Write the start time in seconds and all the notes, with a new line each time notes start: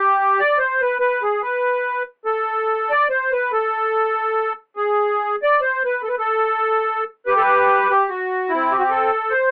Already playing: G4
0.39 D5
0.58 C5
0.82 B4
0.99 B4
1.22 G#4
1.42 B4
2.25 A4
2.90 D5
3.09 C5
3.32 B4
3.52 A4
4.76 G#4
5.43 D5
5.61 C5
5.85 B4
6.03 A4
6.08 B4
6.18 A4
7.26 G4 B4
7.37 A4
7.41 B4
7.90 G4
8.09 F#4
8.49 C4 E4
8.72 G4
8.79 F#4 G4
8.90 A4
9.30 C5